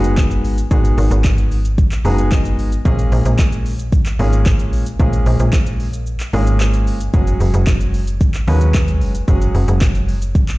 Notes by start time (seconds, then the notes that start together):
Already playing: F#1 G#3 B3 D#4 F#4 G#4
0.04 closed hi-hat, shaker
0.17 kick, snare, clap, shaker
0.31 closed hi-hat, shaker
0.44 G#1, open hi-hat, shaker
0.58 closed hi-hat, shaker
0.71 G#1 G#3 B3 D#4 F#4 G#4, kick, shaker
0.85 closed hi-hat, shaker
0.98 G#1, open hi-hat, shaker
1.11 G#1, closed hi-hat, shaker
1.25 kick, snare, clap, shaker
1.38 closed hi-hat, shaker
1.51 open hi-hat, shaker
1.65 closed hi-hat, shaker
1.78 kick, shaker
1.92 clap, closed hi-hat, shaker
2.05 F#1 G#3 B3 D#4 F#4 G#4 A#5, open hi-hat, shaker
2.18 G#5, closed hi-hat, shaker
2.32 D#5, kick, snare, clap, shaker
2.45 closed hi-hat, shaker
2.58 G#1, open hi-hat, shaker
2.72 closed hi-hat, shaker
2.85 A#1 G#3 A#3 C#4 F4 G#4, kick, shaker
2.99 closed hi-hat, shaker
3.12 A#1, open hi-hat, shaker
3.25 A#1, closed hi-hat, shaker
3.39 kick, snare, clap, shaker
3.52 closed hi-hat, shaker
3.66 open hi-hat, shaker
3.79 closed hi-hat, shaker
3.92 kick, shaker
4.06 clap, closed hi-hat, shaker
4.19 G#1 G#3 A#3 C#4 F4 G#4, open hi-hat, shaker
4.33 closed hi-hat, shaker
4.46 kick, snare, clap, shaker
4.59 closed hi-hat, shaker
4.73 A#1, open hi-hat, shaker
4.86 closed hi-hat, shaker
4.99 A#1 G#3 A#3 C#4 F4 G#4, kick, shaker
5.13 closed hi-hat, shaker
5.26 A#1, open hi-hat, shaker
5.40 A#1, closed hi-hat, shaker
5.53 kick, snare, clap, shaker
5.66 closed hi-hat, shaker
5.80 open hi-hat, shaker
5.93 closed hi-hat, shaker
6.07 shaker
6.20 clap, closed hi-hat, shaker
6.33 G#1 G#3 A#3 C#4 F4 G#4, open hi-hat, shaker
6.47 closed hi-hat, shaker
6.60 snare, clap, shaker
6.74 closed hi-hat, shaker
6.87 G1, open hi-hat, shaker
7.00 closed hi-hat, shaker
7.14 F#1 F#3 G#3 C#4 F#4 G#4, kick, shaker
7.27 closed hi-hat, shaker
7.40 F#1, open hi-hat, shaker
7.54 F#1, closed hi-hat, shaker
7.67 kick, snare, clap, shaker
7.81 closed hi-hat, shaker
7.94 open hi-hat, shaker
8.07 closed hi-hat, shaker
8.21 kick, shaker
8.34 clap, closed hi-hat, shaker
8.47 D#2 F#3 G#3 C#4 F#4 B4, open hi-hat, shaker
8.61 closed hi-hat, shaker
8.74 kick, snare, clap, shaker
8.88 closed hi-hat, shaker
9.01 F#1, open hi-hat, shaker
9.15 closed hi-hat, shaker
9.28 F#1 F#3 G#3 C#4 F#4 G#4, kick, shaker
9.41 closed hi-hat, shaker
9.55 F#1, open hi-hat, shaker
9.68 F#1, closed hi-hat, shaker
9.81 kick, snare, clap, shaker
9.95 closed hi-hat, shaker
10.08 open hi-hat, shaker
10.22 closed hi-hat, shaker
10.35 kick, shaker
10.48 clap, closed hi-hat, shaker